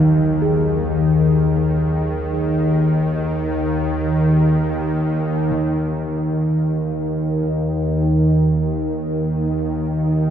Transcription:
Already playing: kettle gongs B1 D#3, synth drone D#2 D#3
0.42 kettle gongs G#4
5.52 synth drone D#2 D#3, kettle gongs D#3

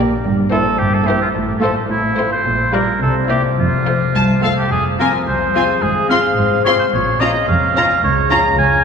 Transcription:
Already playing: double bass section A#1, cello section A#2, harp A#2 A#3 D4 G4, viola section A#3, violin section G4
0.00 violin section D5
0.24 double bass section G1, cello section G2, harp G2
0.51 viola section A#3, harp C4, violin section E4 C5, oboe A4
0.78 double bass section G1, cello section G2, oboe G4, harp A#4
0.94 oboe A4
1.06 viola section A#3, harp E4, violin section E4 C5, oboe G4
1.22 oboe F4
1.35 double bass section A1, harp A2, cello section A2
1.61 viola section A3, violin section F4 C5, oboe A4
1.90 double bass section A1, cello section A2, oboe E4, harp A4
2.18 viola section A3, harp F4, violin section F4 C5
2.32 oboe C5
2.45 double bass section A#1, harp A#2, cello section A#2
2.73 viola section G3, harp F4, violin section F4 D5, oboe A#4
3.02 double bass section C2, cello section C3, harp C3, oboe A4
3.29 viola section A#3, violin section E4 D5, harp E4 A#4, oboe G4
3.58 double bass section F1, cello section F2, harp F3, oboe F4
3.86 viola section A3, harp F4, violin section F4 C5
4.14 cello section C2, double bass section C2, harp C5, violin section A5
4.42 viola section A3, violin section F4 F5, oboe A4, harp A4
4.57 oboe G4
4.71 double bass section F1, cello section F2, harp F3, oboe G#4
4.99 viola section C4, harp F4, violin section F4 G#5, oboe A#4
5.26 double bass section C2, cello section C2, harp C5, oboe C5
5.54 viola section C4, violin section F4 G#5, harp G#4
5.82 double bass section G#1, harp G#2, cello section G#2, oboe G#4
6.09 harp C4, viola section C4, violin section F4 C6, oboe F5
6.37 double bass section G#1, cello section G#2, harp C5
6.65 viola section C4, harp F4, violin section F4 C6, oboe C#5
6.79 oboe C5
6.92 double bass section A#1, harp A#2, cello section A#2, oboe C#5
7.20 harp C#4, viola section C#4, violin section F4 A#5, oboe D#5
7.47 double bass section F1, cello section F2, harp A#4, oboe F5
7.76 viola section C#4, violin section F4 A#5
8.02 cello section C#2, double bass section C#2, harp C#3, oboe C#5
8.30 viola section C#4, harp C#4, violin section F4 A#5, oboe A#5
8.58 double bass section C#2, cello section C#2, harp A#4, oboe G#5

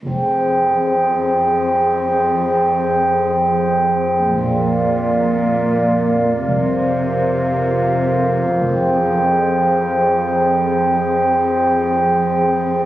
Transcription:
0.04 double bass section F1, cello section F2, synth drone F2, glass harmonica G#4 C5 G5
4.32 double bass section A#1, cello section A#2, glass harmonica A#4 D5 F5
6.47 double bass section C2, synth drone F2, cello section C3, glass harmonica C5
8.61 double bass section F1, cello section F2, glass harmonica G5
8.65 glass harmonica G#4

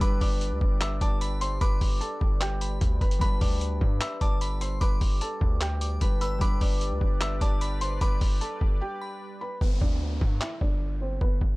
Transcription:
Already playing: analog synth pad G3 G4 B4 D5
0.00 808-style bass G1, harp G3 D4 B4, felt piano B4 B5, synth bell D6, kick, closed hi-hat
0.21 808-style bass G1, felt piano D5 D6, kick, open hi-hat
0.41 closed hi-hat
0.51 808-style bass D2
0.61 808-style bass G1, kick
0.81 felt piano E5 E6, clap, closed hi-hat
1.01 808-style bass G1, felt piano D5 D6, synth bell A5, kick, closed hi-hat
1.21 synth bell B5, closed hi-hat
1.41 felt piano C5 C6, synth bell C6, closed hi-hat
1.61 808-style bass G1, felt piano B4 B5, synth bell D6, kick, closed hi-hat
1.81 808-style bass G1, kick, open hi-hat
2.01 felt piano A4 A5, closed hi-hat
2.21 808-style bass G1, kick
2.41 felt piano G4 G5, clap, closed hi-hat
2.61 synth bell B5, closed hi-hat
2.81 808-style bass D2, kick, closed hi-hat
3.01 808-style bass G1, felt piano B4 B5, kick, closed hi-hat
3.11 closed hi-hat
3.19 808-style bass G1, harp G3 D4, felt piano B4 B5, synth bell B5, kick, closed hi-hat
3.24 harp B4
3.41 808-style bass D2, felt piano D5 D6, kick, open hi-hat
3.61 closed hi-hat
3.81 808-style bass G2, kick
4.01 felt piano E5 E6, clap, closed hi-hat
4.21 808-style bass G1, felt piano D5 D6, synth bell A5, kick, closed hi-hat
4.41 synth bell B5, closed hi-hat
4.61 felt piano C5 C6, synth bell C6, closed hi-hat
4.81 808-style bass G1, felt piano B4 B5, synth bell D6, kick, closed hi-hat
5.01 808-style bass G1, kick, open hi-hat
5.21 felt piano A4 A5, closed hi-hat
5.41 808-style bass D2, kick
5.61 felt piano G4 G5, clap, closed hi-hat
5.81 synth bell D6, closed hi-hat
6.00 808-style bass G1, harp G3 D4 B4, synth bell B5, kick, closed hi-hat
6.21 felt piano B4 B5, synth bell E6, closed hi-hat
6.38 808-style bass G1, harp G3 D4, analog synth pad G3 G4 B4 D5, felt piano B4 B5, synth bell D6, kick, closed hi-hat
6.44 harp B4
6.61 808-style bass G1, felt piano D5 D6, kick, open hi-hat
6.81 closed hi-hat
6.91 808-style bass D2
7.01 808-style bass G1, kick
7.21 felt piano E5 E6, clap, closed hi-hat
7.41 808-style bass G1, felt piano D5 D6, synth bell A5, kick, closed hi-hat
7.61 synth bell B5, closed hi-hat
7.81 felt piano C5 C6, synth bell C6, closed hi-hat
8.01 808-style bass G1, felt piano B4 B5, synth bell D6, kick, closed hi-hat
8.21 808-style bass G1, kick, open hi-hat
8.41 felt piano A4 A5, closed hi-hat
8.61 808-style bass G1, kick
8.81 felt piano G4 G5
9.01 synth bell B5
9.41 felt piano B4 B5
9.61 808-style bass G1, felt piano B3 B4, kick, downlifter
9.81 808-style bass D2, felt piano D4 D5, kick
10.21 808-style bass G2, kick
10.41 felt piano E4 E5, clap
10.61 808-style bass G1, felt piano D4 D5, kick
11.01 felt piano C4 C5
11.21 808-style bass G1, felt piano B3 B4, kick
11.41 808-style bass G1, kick

